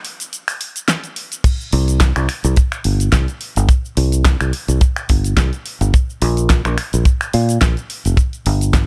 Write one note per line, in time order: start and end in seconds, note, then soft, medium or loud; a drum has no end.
0.05 open hi-hat loud
0.20 closed hi-hat medium
0.20 cabasa medium
0.33 closed hi-hat medium
0.33 cabasa medium
0.48 finger snap medium
0.48 open hi-hat medium
0.48 cabasa soft
0.61 open hi-hat loud
0.76 closed hi-hat medium
0.76 cabasa medium
0.88 snare loud
0.88 closed hi-hat medium
0.88 cabasa medium
1.04 closed hi-hat soft
1.04 cabasa soft
1.16 open hi-hat loud
1.32 closed hi-hat medium
1.32 cabasa medium
1.44 kick loud
1.44 closed hi-hat medium
1.44 crash medium
1.44 cabasa medium
1.61 cabasa soft
1.72 2.12 C2 loud
1.72 open hi-hat loud
1.88 closed hi-hat medium
1.88 cabasa medium
2.00 kick loud
2.00 snare loud
2.00 closed hi-hat medium
2.00 cabasa medium
2.16 2.27 C2 medium
2.16 finger snap medium
2.16 closed hi-hat soft
2.16 cabasa soft
2.29 finger snap medium
2.29 open hi-hat loud
2.44 2.55 C2 medium
2.44 closed hi-hat medium
2.44 cabasa medium
2.56 kick loud
2.56 closed hi-hat medium
2.56 cabasa medium
2.72 finger snap medium
2.72 cabasa soft
2.84 3.08 G1 medium
2.84 open hi-hat loud
3.00 closed hi-hat medium
3.00 cabasa medium
3.12 3.25 C2 medium
3.12 kick loud
3.12 snare loud
3.12 closed hi-hat medium
3.12 cabasa medium
3.28 closed hi-hat soft
3.28 cabasa soft
3.41 open hi-hat loud
3.56 3.67 G1 medium
3.56 closed hi-hat medium
3.56 cabasa medium
3.69 kick loud
3.69 closed hi-hat medium
3.69 cabasa medium
3.85 cabasa soft
3.97 4.36 C2 loud
3.97 open hi-hat loud
4.12 closed hi-hat medium
4.12 cabasa medium
4.25 kick loud
4.25 snare loud
4.25 closed hi-hat medium
4.25 cabasa medium
4.41 4.51 C2 medium
4.41 finger snap medium
4.41 closed hi-hat soft
4.41 cabasa soft
4.53 open hi-hat loud
4.68 4.79 C2 medium
4.68 closed hi-hat medium
4.68 cabasa medium
4.81 kick loud
4.81 closed hi-hat medium
4.81 cabasa medium
4.96 finger snap medium
4.96 cabasa soft
5.09 5.33 G1 medium
5.09 kick medium
5.09 open hi-hat loud
5.24 closed hi-hat medium
5.24 cabasa medium
5.37 5.50 C2 medium
5.37 kick loud
5.37 snare loud
5.37 closed hi-hat medium
5.37 cabasa medium
5.53 closed hi-hat soft
5.53 cabasa soft
5.66 open hi-hat loud
5.81 5.91 G1 medium
5.81 closed hi-hat medium
5.81 cabasa medium
5.94 kick loud
5.94 closed hi-hat medium
5.94 cabasa medium
6.10 cabasa soft
6.22 6.60 A#1 loud
6.22 open hi-hat loud
6.37 closed hi-hat medium
6.37 cabasa medium
6.50 kick loud
6.50 snare loud
6.50 closed hi-hat medium
6.50 cabasa medium
6.65 6.75 A#1 medium
6.65 finger snap medium
6.65 closed hi-hat soft
6.65 cabasa soft
6.78 finger snap medium
6.78 open hi-hat loud
6.93 7.04 A#1 medium
6.93 closed hi-hat soft
6.93 cabasa medium
7.05 kick loud
7.05 closed hi-hat medium
7.05 cabasa medium
7.21 finger snap medium
7.21 cabasa soft
7.33 7.57 A#2 medium
7.33 open hi-hat loud
7.49 closed hi-hat medium
7.49 cabasa medium
7.61 7.74 A#1 medium
7.61 kick loud
7.61 snare loud
7.61 closed hi-hat medium
7.61 cabasa medium
7.77 closed hi-hat soft
7.77 cabasa soft
7.90 open hi-hat loud
8.05 8.16 F1 medium
8.05 closed hi-hat medium
8.05 cabasa medium
8.17 kick loud
8.17 closed hi-hat medium
8.17 cabasa medium
8.33 closed hi-hat soft
8.33 cabasa soft
8.46 8.85 G1 loud
8.46 open hi-hat loud
8.61 closed hi-hat medium
8.61 cabasa medium
8.74 kick loud
8.74 snare loud
8.74 closed hi-hat medium
8.74 cabasa medium